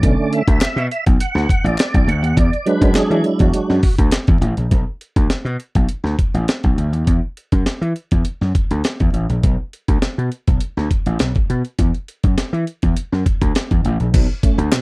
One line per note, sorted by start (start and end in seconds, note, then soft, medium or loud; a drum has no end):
0.00 0.15 B1 loud
0.00 0.42 D3 medium
0.00 0.43 A3 medium
0.00 0.43 C#4 medium
0.00 0.34 D5 loud
0.00 kick loud
0.00 closed hi-hat medium
0.33 0.87 E5 loud
0.33 closed hi-hat medium
0.47 0.58 D2 medium
0.47 kick loud
0.47 closed hi-hat medium
0.61 snare loud
0.61 clap loud
0.61 closed hi-hat medium
0.76 0.87 B2 loud
0.76 closed hi-hat soft
0.91 1.05 E5 loud
0.91 closed hi-hat medium
1.06 1.17 B1 medium
1.06 kick loud
1.06 closed hi-hat medium
1.20 1.67 F#5 loud
1.20 closed hi-hat loud
1.35 1.45 D2 loud
1.35 snare soft
1.49 kick medium
1.49 closed hi-hat medium
1.64 1.75 A1 medium
1.64 2.10 D5 medium
1.64 closed hi-hat medium
1.78 snare loud
1.78 clap medium
1.78 closed hi-hat loud
1.94 2.05 B1 medium
1.94 kick medium
1.94 closed hi-hat soft
2.07 2.23 D2 medium
2.07 2.39 F#5 loud
2.07 closed hi-hat medium
2.23 2.33 D#2 medium
2.23 closed hi-hat medium
2.37 2.49 E2 loud
2.37 2.68 D5 loud
2.37 kick loud
2.37 closed hi-hat medium
2.53 closed hi-hat soft
2.66 3.52 F#3 medium
2.66 3.53 G#3 soft
2.66 3.53 D4 medium
2.66 2.81 B4 medium
2.66 closed hi-hat medium
2.81 2.92 F#2 medium
2.81 2.97 B4 medium
2.81 kick loud
2.81 closed hi-hat medium
2.95 3.10 G#4 medium
2.95 muted slap bass stroke soft
2.95 snare loud
2.95 clap medium
2.95 closed hi-hat medium
3.10 3.21 E3 loud
3.10 3.26 G#4 medium
3.10 closed hi-hat soft
3.24 3.40 E4 medium
3.24 closed hi-hat medium
3.39 3.51 E2 loud
3.39 3.95 F#4 medium
3.39 kick medium
3.39 closed hi-hat medium
3.53 3.80 F#3 medium
3.53 3.81 G#3 soft
3.53 3.81 D4 medium
3.53 closed hi-hat loud
3.70 3.80 F#2 medium
3.70 snare soft
3.83 kick medium
3.83 open hi-hat medium
3.98 4.09 D2 medium
3.98 kick medium
3.98 closed hi-hat medium
4.12 snare loud
4.12 clap medium
4.12 closed hi-hat loud
4.27 4.39 E2 medium
4.27 kick loud
4.27 closed hi-hat soft
4.41 4.53 A1 medium
4.41 closed hi-hat medium
4.57 4.68 A#1 medium
4.57 closed hi-hat medium
4.71 4.83 B1 loud
4.71 kick medium
4.71 closed hi-hat medium
5.01 closed hi-hat medium
5.16 5.27 D2 medium
5.16 kick loud
5.16 closed hi-hat medium
5.30 muted slap bass stroke soft
5.30 snare medium
5.30 closed hi-hat medium
5.45 5.56 B2 medium
5.45 closed hi-hat soft
5.60 closed hi-hat medium
5.75 5.86 B1 medium
5.75 kick medium
5.75 closed hi-hat soft
5.89 closed hi-hat medium
6.04 6.15 D2 medium
6.04 snare soft
6.19 kick medium
6.19 closed hi-hat medium
6.34 6.45 A1 medium
6.34 closed hi-hat soft
6.48 snare loud
6.48 closed hi-hat loud
6.63 6.74 B1 medium
6.63 kick medium
6.63 closed hi-hat soft
6.77 6.93 D2 medium
6.77 closed hi-hat medium
6.93 7.04 D#2 medium
6.93 closed hi-hat soft
7.07 7.19 E2 loud
7.07 kick medium
7.07 closed hi-hat medium
7.37 closed hi-hat medium
7.52 7.63 F#2 medium
7.52 kick medium
7.52 closed hi-hat soft
7.66 snare loud
7.66 closed hi-hat medium
7.81 7.92 E3 medium
7.81 closed hi-hat soft
7.96 closed hi-hat medium
8.11 8.22 E2 medium
8.11 kick medium
8.11 closed hi-hat medium
8.25 closed hi-hat medium
8.41 8.52 F#2 medium
8.41 snare soft
8.55 kick medium
8.55 closed hi-hat medium
8.71 8.81 D2 medium
8.71 closed hi-hat medium
8.84 snare loud
8.84 closed hi-hat loud
9.00 9.11 E2 medium
9.00 kick medium
9.00 closed hi-hat soft
9.13 9.25 A1 medium
9.13 closed hi-hat medium
9.29 9.40 A#1 medium
9.29 closed hi-hat medium
9.43 9.55 B1 loud
9.43 kick medium
9.43 closed hi-hat medium
9.73 closed hi-hat medium
9.88 9.99 D2 medium
9.88 kick loud
9.88 closed hi-hat medium
10.02 muted slap bass stroke soft
10.02 snare medium
10.02 closed hi-hat medium
10.18 10.29 B2 medium
10.18 closed hi-hat soft
10.32 closed hi-hat medium
10.47 10.58 B1 medium
10.47 kick medium
10.47 closed hi-hat soft
10.60 closed hi-hat medium
10.77 10.88 D2 medium
10.77 snare soft
10.91 kick medium
10.91 closed hi-hat medium
11.06 11.17 A1 medium
11.06 closed hi-hat medium
11.19 11.32 B1 medium
11.19 snare loud
11.19 closed hi-hat loud
11.35 kick medium
11.35 closed hi-hat soft
11.50 11.62 B2 medium
11.50 closed hi-hat medium
11.65 closed hi-hat soft
11.79 11.91 E2 loud
11.79 kick medium
11.79 closed hi-hat medium
11.94 closed hi-hat soft
12.08 closed hi-hat medium
12.23 12.34 F#2 medium
12.23 kick medium
12.23 closed hi-hat medium
12.38 muted slap bass stroke soft
12.38 snare medium
12.38 closed hi-hat medium
12.53 12.64 E3 medium
12.53 closed hi-hat soft
12.67 closed hi-hat medium
12.82 12.93 E2 medium
12.82 kick medium
12.82 closed hi-hat soft
12.97 closed hi-hat medium
13.12 13.23 F#2 medium
13.12 snare soft
13.26 kick medium
13.26 closed hi-hat medium
13.41 13.52 D2 medium
13.41 kick medium
13.41 closed hi-hat medium
13.55 snare loud
13.55 closed hi-hat loud
13.71 13.81 E2 medium
13.71 kick medium
13.71 closed hi-hat soft
13.85 13.97 A1 medium
13.85 closed hi-hat medium
14.00 14.10 A#1 medium
14.00 closed hi-hat soft
14.14 14.26 B1 loud
14.14 14.29 B2 medium
14.14 kick loud
14.14 closed hi-hat medium
14.14 crash loud
14.43 14.58 A3 medium
14.43 14.59 C#4 medium
14.43 kick loud
14.43 closed hi-hat medium
14.58 14.69 D2 medium
14.58 closed hi-hat medium
14.72 14.82 B2 medium
14.72 muted slap bass stroke soft
14.72 snare loud
14.72 clap loud
14.72 closed hi-hat medium